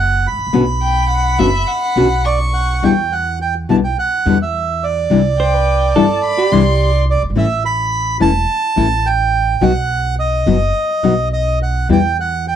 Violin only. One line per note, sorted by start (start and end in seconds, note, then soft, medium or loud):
0.81 1.08 G5 medium
1.09 1.40 F#5 medium
1.39 1.69 E5 medium
1.67 2.27 F#5 medium
2.25 2.83 C#6 medium
5.39 5.92 G5 medium
5.95 6.21 A5 medium
6.24 6.54 B5 medium
6.52 6.94 C6 medium